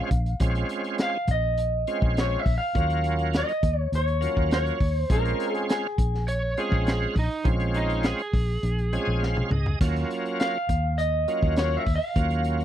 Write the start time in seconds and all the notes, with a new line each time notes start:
Already playing: G#3 C#4 F4 F5
0.11 A#1, kick, closed hi-hat
0.26 closed hi-hat
0.40 A#1 G#3 C4 C#4 F4, kick, closed hi-hat
0.55 closed hi-hat
0.69 closed hi-hat
0.84 closed hi-hat
0.98 snare, closed hi-hat
1.02 F5
1.28 A#1 D#5, kick, closed hi-hat
1.58 closed hi-hat
1.87 G#3 C4 C#4 F4, closed hi-hat
2.02 A#1, kick
2.17 C#5, snare, closed hi-hat
2.40 E5
2.46 A#1, kick, open hi-hat
2.58 F5
2.75 D#2 F#3 A#3 C#4 F4, kick, closed hi-hat
2.90 closed hi-hat
3.04 closed hi-hat
3.19 closed hi-hat
3.33 D#5, snare, closed hi-hat
3.49 closed hi-hat
3.63 D#2, kick, closed hi-hat
3.78 C#5
3.92 D#2 C#5, closed hi-hat
4.08 closed hi-hat
4.21 F#3 A#3 C#4 F4, closed hi-hat
4.37 D#2, kick
4.51 C#5, snare, closed hi-hat
4.66 closed hi-hat
4.80 D#2, kick, open hi-hat
4.96 C5
5.10 A#1 G#3 C4 C#4 F4 A#4, kick, closed hi-hat
5.25 closed hi-hat
5.40 closed hi-hat
5.54 G#4, closed hi-hat
5.69 G#4, snare, closed hi-hat
5.98 A#1, kick, closed hi-hat
6.15 snare
6.28 C#5, closed hi-hat
6.57 G#3 C4 C#4 F4 G#4, closed hi-hat
6.71 A#1, kick
6.87 snare, closed hi-hat
7.15 A#1 D#4, kick, open hi-hat
7.44 A#1 G#3 C4 C#4 F4, kick, closed hi-hat
7.60 closed hi-hat
7.74 D#4, closed hi-hat
7.90 closed hi-hat
8.03 G#4, snare, closed hi-hat
8.19 closed hi-hat
8.33 A#1, kick, open hi-hat
8.63 A#1, closed hi-hat
8.79 closed hi-hat
8.93 G#3 C4 C#4 F4 G#5, closed hi-hat
9.07 A#1
9.23 F5, snare
9.37 mid tom
9.51 C#2 D#5, mid tom
9.66 floor tom
9.81 D#2 F#3 A#3 C#4 F4, kick, closed hi-hat, crash
9.96 closed hi-hat
10.11 closed hi-hat
10.26 closed hi-hat
10.40 F5, snare, closed hi-hat
10.69 D#2, kick, closed hi-hat
10.98 D#5, closed hi-hat
11.28 F#3 A#3 C#4 F4, closed hi-hat
11.43 D#2, kick
11.56 C#5, snare, closed hi-hat
11.77 E5
11.86 D#2, kick, open hi-hat
11.96 F5
12.16 D#2 F#3 A#3 C#4 F4, kick, closed hi-hat
12.30 closed hi-hat
12.44 closed hi-hat
12.60 closed hi-hat